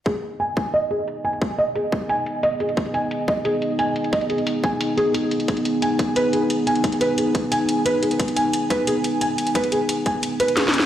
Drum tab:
HH |x--x--x-----x-----x-----x-----x-----x-----x--x--|x--x--x-----x-----x-----x-----x-----x-----x--x--|x--x--x-----x-----x-----x-----x-----x-----x--x--|x--x--x--x--x-----x-----x-----x-----x-----x--x--|
SD |------------------------------------------------|------------------------------------------------|------------------------------------------------|------------------------------------------------|
BD |o-----------------o-----------------------------|o-----------------o-----------------------------|o-----------------o-----------------------------|o-----------------o-----------------------------|

HH |x--x--x-----x-----x-----x-----x-----x-----x--x--|x--x--x-----x-----x-----x-----x-----x-----x--x--|x--x--x-----x-----x-----x-----x-----x-----x--x--|x--x--x-----x-----x-----x-----x--x--x-----x--x--|
SD |------------------------------------------------|------------------------------------------------|------------------------------------------------|------------------------------------o---o---o---|
BD |o-----------------o-----------------------------|o-----------------o-----------------------------|o-----------------o-----------------------------|o-----------------o-----------------------------|